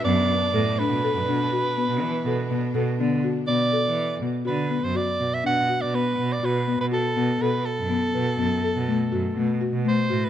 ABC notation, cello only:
X:1
M:7/4
L:1/16
Q:1/4=122
K:Bphr
V:1 name="Cello" clef=bass
F,,2 z2 A,,2 z B,, z F,, B,,2 z3 B,, E, z B,, z B,, z B,, z D,2 z2 | B,,2 z E,3 B,, z D,3 F,,2 z B,, z B,,2 z B,,3 B,,2 B,,3 B,,- | B,, z B,,2 B,,2 z F,,3 B,,2 F,,2 z B,,2 z F,,2 B,,2 z B,,2 z A,,2 |]